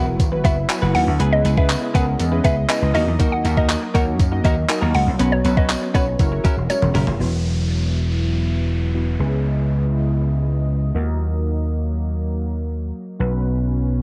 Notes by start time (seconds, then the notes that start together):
Already playing: E1 F#3 B3 E4 F#4 A#4 F#5
0.07 muted clean electric guitar stroke
0.20 G#1, muted clean electric guitar stroke, kick, closed hi-hat, tambourine
0.32 F#3 B3 E4 F#4 B4, muted clean electric guitar stroke
0.44 F#1 B3 E4 F#4 B4 E5, kick, closed hi-hat, tambourine
0.57 muted clean electric guitar stroke
0.70 F#3 B3 E4 F#4 B4, muted clean electric guitar stroke, clap, closed hi-hat, tambourine
0.82 F#1 B3 E4 F#4 B4
0.95 D#2 F#5, muted clean electric guitar stroke, open hi-hat, tambourine
1.07 D2, muted clean electric guitar stroke
1.19 C#2 C#3 G#3 B3 C#4 E4 G#4 B4 D#5, closed hi-hat
1.32 D#5
1.44 C#2 B3 E4 G#4 B4, closed hi-hat, tambourine
1.57 B3 C#4 E4 G#4 B4 E5, kick
1.69 clap, closed hi-hat, tambourine
1.82 muted clean electric guitar stroke
1.94 C#2 B3 C#4 E4 G#4 A#4 B4 F#5, kick, closed hi-hat, tambourine
2.07 muted clean electric guitar stroke
2.19 E2, muted clean electric guitar stroke, closed hi-hat, tambourine
2.32 B3 C#4 E4 G#4 B4, muted clean electric guitar stroke
2.44 C#2 B3 E4 G#4 B4 E5, kick, closed hi-hat, tambourine
2.57 muted clean electric guitar stroke
2.69 B3 C#4 E4 G#4 B4 D#5, muted clean electric guitar stroke, clap, closed hi-hat, tambourine
2.82 C#2, muted clean electric guitar stroke
2.94 D#2 F#3 A#3 D#4 F#4 A#4 D#5, open hi-hat, tambourine
3.07 E2, muted clean electric guitar stroke
3.19 D#2 A#3 D#4 F#4 A#4, kick, closed hi-hat, tambourine
3.32 F#5
3.44 D#2 A#3 D#4 F#4 A#4, closed hi-hat, tambourine
3.57 A#3 D#4 F#4 A#4 D#5, kick
3.69 clap, closed hi-hat, tambourine
3.82 muted clean electric guitar stroke
3.94 D#2 A#3 D#4 F#4 A#4 C#5 F#5, kick, closed hi-hat, tambourine
4.07 muted clean electric guitar stroke
4.19 F#2, muted clean electric guitar stroke, kick, closed hi-hat, tambourine
4.32 A#3 D#4 F#4 A#4 D#5, muted clean electric guitar stroke
4.44 D#2 A#3 D#4 F#4 A#4 D#5, kick, closed hi-hat, tambourine
4.57 muted clean electric guitar stroke
4.69 A#3 D#4 F#4 A#4 D#5, muted clean electric guitar stroke, clap, closed hi-hat, tambourine
4.82 D#2 A#3 D#4 F#4 A#4
4.95 C#2 F#5, muted clean electric guitar stroke, open hi-hat
5.07 C2, muted clean electric guitar stroke
5.19 B1 B3 C#4 F#4 B4 C#5, closed hi-hat, tambourine
5.32 C#5
5.44 B1 B3 C#4 F#4 B4, closed hi-hat, tambourine
5.57 B3 C#4 F#4 B4 C#5 D#5, kick
5.70 clap, closed hi-hat, tambourine
5.82 muted clean electric guitar stroke
5.94 B1 B3 C#4 F#4 B4 C#5, kick, closed hi-hat, tambourine
6.07 muted clean electric guitar stroke
6.19 F#1 C#4 E4 F#4 G#4 A#4 C#5, kick, closed hi-hat, tambourine
6.32 C#4 E4 F#4 A#4 C#5, muted clean electric guitar stroke
6.44 F#3 C#4 E4 A#4, muted slap bass stroke, kick, closed hi-hat, tambourine
6.57 E1, muted clean electric guitar stroke
6.69 C#4 E4 F#4 A#4 C#5, muted clean electric guitar stroke, closed hi-hat, high tom, tambourine
6.82 E1, muted clean electric guitar stroke, mid tom
6.94 F#1 F#3 C#4 E4 A#4, mid tom, open hi-hat, tambourine
7.07 F1, muted clean electric guitar stroke, floor tom
7.19 E1 F#3 B3 E4 F#4 B4, downlifter
8.95 B3 E4 F#4 B4
9.19 C#2 C#3 G#3 C#4 E4 G#4 B4 D#5
10.94 D#2 F#3 A#3 D#4 F#4 A#4
13.19 B1 F#3 B3 C#4 F#4 B4